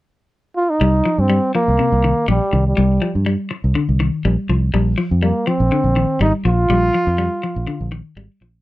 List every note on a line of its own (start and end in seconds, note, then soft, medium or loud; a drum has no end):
0.57 0.72 F4 medium
0.70 1.21 D#4 medium
0.81 1.01 C2 medium
0.81 1.03 G3 medium
1.05 1.28 F3 medium
1.18 1.38 G2 medium
1.18 1.55 C4 medium
1.30 1.52 G3 medium
1.55 1.77 F3 medium
1.55 2.25 A#3 medium
1.68 1.77 C2 medium
1.79 2.01 C3 medium
1.92 2.12 C2 medium
2.04 2.26 D#3 medium
2.28 2.39 A#1 medium
2.28 2.50 G3 medium
2.28 2.64 G3 medium
2.53 2.73 C2 medium
2.53 2.75 D#3 medium
2.67 3.12 G3 medium
2.77 2.98 C2 medium
2.77 2.99 G3 medium
3.02 3.24 F3 medium
3.15 3.35 G2 medium
3.26 3.49 G3 medium
3.51 muted clean electric guitar stroke medium
3.64 3.74 C2 medium
3.75 3.98 D3 medium
3.89 4.09 C2 medium
4.00 4.22 D#3 medium
4.25 4.35 A#1 medium
4.25 4.47 G3 medium
4.49 4.69 C2 medium
4.49 4.72 F3 medium
4.74 4.94 A#1 medium
4.74 4.96 G3 medium
4.98 5.20 F3 medium
5.11 5.31 F2 medium
5.22 5.45 G3 medium
5.22 5.49 A#3 medium
5.47 5.69 F3 medium
5.47 6.21 C4 medium
5.60 5.70 A#1 medium
5.72 5.94 D3 medium
5.84 6.04 A#1 medium
5.96 6.18 D#3 medium
6.20 6.31 G#1 loud
6.20 6.43 G3 medium
6.20 6.33 D#4 medium
6.45 6.65 A#1 medium
6.45 6.67 F3 medium
6.45 7.89 F4 loud
6.69 6.90 A#1 medium
6.69 6.92 G3 medium
6.94 7.17 F3 medium
7.07 7.27 F2 medium
7.18 7.41 G3 medium
7.43 7.66 F3 medium
7.56 7.66 A#1 medium
7.67 7.90 D3 medium
7.81 8.01 A#1 medium
7.92 8.14 D#3 medium
8.16 8.27 G#1 loud
8.16 8.39 G3 medium
8.41 8.61 A#1 medium
8.41 8.62 F3 medium